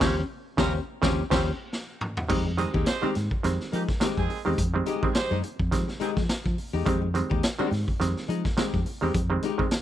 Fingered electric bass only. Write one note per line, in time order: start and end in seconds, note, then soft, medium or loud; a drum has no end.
0.01 0.21 D#2 medium
0.58 0.78 D#2 loud
1.03 1.22 D#2 loud
1.31 1.50 D#2 medium
2.30 2.64 F2 medium
2.74 2.84 D#2 medium
3.03 muted fingered electric bass stroke soft
3.16 3.28 G#2 medium
3.45 3.57 F2 medium
3.73 3.85 F3 medium
4.02 muted fingered electric bass stroke soft
4.18 4.27 F2 medium
4.46 4.55 E2 medium
4.58 4.80 F2 loud
5.03 muted fingered electric bass stroke soft
5.31 5.41 F#2 medium
5.60 5.69 F2 medium
5.72 5.85 F3 medium
6.00 muted fingered electric bass stroke soft
6.17 6.27 F3 medium
6.46 6.55 F3 loud
6.74 6.83 E2 medium
6.86 7.21 F2 loud
7.31 7.41 D#2 medium
7.59 muted fingered electric bass stroke soft
7.71 7.84 G#2 medium
8.01 8.13 F2 loud
8.29 8.41 F3 medium
8.58 muted fingered electric bass stroke soft
8.74 8.83 F2 medium
9.02 9.12 E2 medium
9.15 9.37 F2 loud
9.59 muted fingered electric bass stroke soft